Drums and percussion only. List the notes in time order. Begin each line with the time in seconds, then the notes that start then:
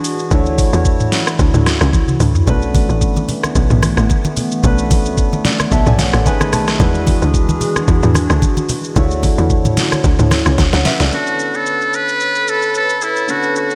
0.04 open hi-hat, shaker
0.19 shaker
0.31 kick, shaker
0.46 shaker
0.58 kick, open hi-hat, shaker
0.73 shaker
0.85 kick, shaker
1.00 mid tom, shaker
1.12 snare, open hi-hat, shaker
1.27 cross-stick, shaker
1.39 kick, shaker
1.54 mid tom, shaker
1.66 cross-stick, snare, open hi-hat, shaker
1.81 cross-stick, shaker
1.93 kick, high tom, shaker
2.08 mid tom, shaker
2.20 mid tom, open hi-hat, shaker
2.35 floor tom, shaker
2.47 kick, low conga, shaker
2.62 shaker
2.75 kick, open hi-hat, high conga, shaker
2.89 shaker
3.01 kick, shaker
3.16 high conga, shaker
3.29 open hi-hat, low conga, shaker
3.43 cross-stick, high conga, shaker
3.55 kick, shaker
3.70 mid tom, shaker
3.83 cross-stick, open hi-hat, high conga, shaker
3.97 cross-stick, shaker
4.10 kick, high conga, shaker
4.25 high conga, shaker
4.37 open hi-hat, low conga, shaker
4.52 shaker
4.64 kick, low conga, shaker
4.78 shaker
4.91 kick, open hi-hat, high conga, shaker
5.06 shaker
5.18 kick, shaker
5.33 high conga, shaker
5.45 snare, open hi-hat, low conga, shaker
5.60 cross-stick, high conga, shaker
5.71 kick, shaker
5.86 mid tom, shaker
5.99 snare, open hi-hat, high conga, shaker
6.13 cross-stick, shaker
6.26 kick, high conga, shaker
6.41 cross-stick, high conga, shaker
6.53 cross-stick, open hi-hat, low conga, shaker
6.68 cross-stick, snare, shaker
6.80 kick, low conga, shaker
6.95 shaker
7.07 kick, open hi-hat, high conga, shaker
7.22 shaker
7.34 kick, shaker
7.49 high conga, shaker
7.61 open hi-hat, low conga, shaker
7.76 cross-stick, high conga, shaker
7.88 kick, shaker
8.03 mid tom, shaker
8.15 cross-stick, open hi-hat, high conga, shaker
8.30 cross-stick, shaker
8.42 kick, high conga, shaker
8.57 high conga, shaker
8.69 open hi-hat, low conga, shaker
8.84 shaker
8.96 kick, low conga, shaker
9.11 shaker
9.23 kick, open hi-hat, high conga, shaker
9.38 shaker
9.50 kick, shaker
9.65 mid tom, high conga, shaker
9.77 snare, open hi-hat, low conga, shaker
9.92 cross-stick, high conga, shaker
10.04 kick, shaker
10.19 mid tom, shaker
10.31 cross-stick, snare, open hi-hat, high conga, shaker
10.46 cross-stick, shaker
10.58 kick, snare, high conga, shaker
10.73 snare, high conga, shaker
10.85 snare, open hi-hat, low conga, shaker
11.00 snare, shaker
11.12 shaker
11.27 shaker
11.39 shaker
11.54 shaker
11.66 shaker
11.81 shaker
11.93 shaker
12.09 shaker
12.20 shaker
12.35 shaker
12.48 shaker
12.62 shaker
12.75 shaker
12.89 shaker
13.01 shaker
13.16 shaker
13.28 shaker
13.43 shaker
13.56 shaker
13.71 shaker